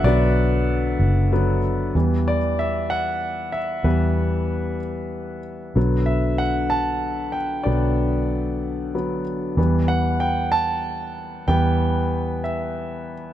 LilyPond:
<<
  \new Staff \with { instrumentName = "Grand piano" } { \time 6/8 \key e \dorian \tempo 4. = 63 d''2~ d''8 r8 | r8 d''8 e''8 fis''4 e''8 | b'2~ b'8 r8 | r8 e''8 fis''8 a''4 g''8 |
d''2~ d''8 r8 | r8 fis''8 g''8 a''4. | g''4. e''4 r8 | }
  \new Staff \with { instrumentName = "Grand piano" } { \clef bass \time 6/8 \key e \dorian <d fis b>2 <d fis b>8 r8 | <e g b>8 r2 r8 | <e g b>4. r4. | <d fis b>4. r4. |
<d fis b>2 <d fis b>8 r8 | <e g b>2. | <e g b>4. r4. | }
  \new Staff \with { instrumentName = "Fingered electric bass" } { \clef bass \time 6/8 \key e \dorian b,,4. fis,,4. | e,2. | e,2. | b,,2. |
b,,2. | e,2. | e,2. | }
>>